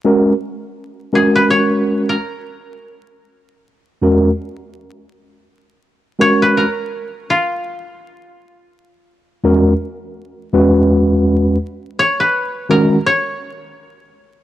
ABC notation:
X:1
M:4/4
L:1/16
Q:"Swing 16ths" 1/4=83
K:F#
V:1 name="Koto"
z6 G B c3 A3 z2 | z16 | z2 c B A4 E6 z2 | z16 |
z2 c B3 A2 c6 z2 |]
V:2 name="Tine electric piano"
[G,CFA]2 z4 [G,CFA]6 z4 | z6 [=E,,G,CFA]2 z8 | z2 [G,CFA]2 z12 | z4 [=E,,G,CFA]2 z4 [E,,G,CFB]6 |
z6 [D,G,CFA]2 z8 |]